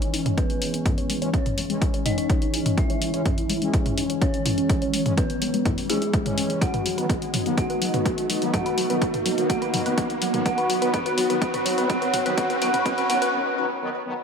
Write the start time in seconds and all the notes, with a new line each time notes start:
Already playing: E3 G#3 C#4 D#4 C#5 D#5, riser
0.02 C#5, closed hi-hat
0.14 D#4, open hi-hat
0.26 C#5, closed hi-hat, mid tom
0.38 B3 C#4 B4, kick, closed hi-hat
0.50 closed hi-hat
0.62 E4, open hi-hat
0.74 C#4, closed hi-hat
0.86 C#4, kick, closed hi-hat, mid tom
0.98 C#5, closed hi-hat
1.10 G#3, open hi-hat
1.22 E3 G#3 C#4 C#5, closed hi-hat
1.34 C#4 C#5, kick, closed hi-hat
1.46 closed hi-hat, mid tom
1.58 G#3, open hi-hat
1.70 E3 G#3 C#4, closed hi-hat
1.82 E4, kick, closed hi-hat
1.94 C#5, closed hi-hat
2.06 D#4 D#5, mid tom, open hi-hat
2.18 C#5, closed hi-hat
2.30 C#4, kick, closed hi-hat
2.42 closed hi-hat
2.54 E4, open hi-hat
2.66 C#4, closed hi-hat, mid tom
2.78 C#4 E4 E5, kick, closed hi-hat
2.90 C#5, closed hi-hat
3.02 G#3, open hi-hat
3.14 E3 G#3 C#4 C#5, closed hi-hat
3.26 C#4, kick, closed hi-hat, mid tom
3.38 closed hi-hat
3.50 G#3, open hi-hat
3.62 E3 G#3 C#4, closed hi-hat
3.74 E4, kick, closed hi-hat
3.86 C#5, closed hi-hat, mid tom
3.98 D#4, open hi-hat
4.10 C#5, closed hi-hat
4.21 C#4 C#5, kick, closed hi-hat
4.34 closed hi-hat
4.46 E4, mid tom, open hi-hat
4.58 C#4, closed hi-hat
4.69 C#4, kick, closed hi-hat
4.82 C#5, closed hi-hat
4.94 G#3, open hi-hat
5.06 E3 G#3 C#4 C#5, closed hi-hat, mid tom
5.17 B3 C#4 B4, kick, closed hi-hat
5.30 closed hi-hat
5.42 G#3, open hi-hat
5.54 G#3, closed hi-hat
5.65 E4, kick, closed hi-hat, mid tom
5.78 C#5, open hi-hat
5.89 E3 G#3 C#4 E4 G#4, open hi-hat
6.02 E4, closed hi-hat
6.13 E4, kick, closed hi-hat
6.26 E3 G#3 C#4, closed hi-hat, mid tom
6.38 C#4, open hi-hat
6.50 G#3, closed hi-hat
6.61 B3 D#4 F#4 D#5 F#5, kick, closed hi-hat
6.74 B4, closed hi-hat, mid tom
6.85 F#3, open hi-hat
6.98 D#3 F#3 B3 B4, closed hi-hat
7.09 B3, kick, closed hi-hat
7.22 closed hi-hat
7.34 F#3, mid tom, open hi-hat
7.46 D#3 F#3 B3, closed hi-hat
7.57 B3 F#4 F#5, kick, closed hi-hat
7.70 B4, closed hi-hat
7.82 F#3, open hi-hat
7.94 D#3 F#3 B3 B4, closed hi-hat, mid tom
8.06 B3, kick, closed hi-hat
8.18 closed hi-hat
8.30 F#3, open hi-hat
8.42 D#3 F#3 B3, closed hi-hat
8.53 B3 F#4 F#5, kick, closed hi-hat, mid tom
8.66 B4, closed hi-hat
8.78 F#3, open hi-hat
8.90 D#3 F#3 B3 B4, closed hi-hat
9.02 B3, kick, closed hi-hat
9.14 closed hi-hat, mid tom
9.26 F#3, open hi-hat
9.38 D#3 F#3 B3, closed hi-hat
9.50 B3 F#5, kick, closed hi-hat
9.62 B4, closed hi-hat
9.74 F#3, mid tom, open hi-hat
9.86 D#3 F#3 B3 B4, closed hi-hat
9.98 B3, kick, closed hi-hat
10.10 closed hi-hat
10.22 F#3, open hi-hat
10.34 D#3 F#3 B3, closed hi-hat, mid tom
10.46 B3 F#4 C#5 F#5, kick, closed hi-hat
10.58 B4, closed hi-hat
10.70 F#3, open hi-hat
10.82 D#3 F#3 B3 B4, closed hi-hat
10.93 B3 F#4 F#5, kick, closed hi-hat, mid tom
11.06 B4, closed hi-hat
11.18 F#3, open hi-hat
11.30 D#3 F#3 B3 B4, closed hi-hat
11.41 B3 F#4 F#5, kick, closed hi-hat
11.54 B4, closed hi-hat, mid tom
11.65 F#3, open hi-hat
11.78 D#3 F#3 B3 B4, closed hi-hat
11.90 B3 F#4 F#5, kick, closed hi-hat
12.02 B4, closed hi-hat
12.14 F#3, mid tom, open hi-hat
12.26 D#3 F#3 B3 B4, closed hi-hat
12.38 D#3 F#3 B3 F#4 F#5, kick, closed hi-hat
12.50 B4, closed hi-hat
12.62 D#3 F#3 B3 F#4 F#5, open hi-hat
12.74 B4, closed hi-hat, mid tom
12.86 D#3 F#3 B3 F#4 F#5, kick, closed hi-hat
12.98 B4, closed hi-hat
13.09 D#3 F#3 B3 F#4 F#5, open hi-hat
13.22 B4, closed hi-hat
13.34 D#3 F#3 B3
13.58 D#3 F#3 B3
13.82 D#3 F#3 B3
14.06 D#3 F#3 B3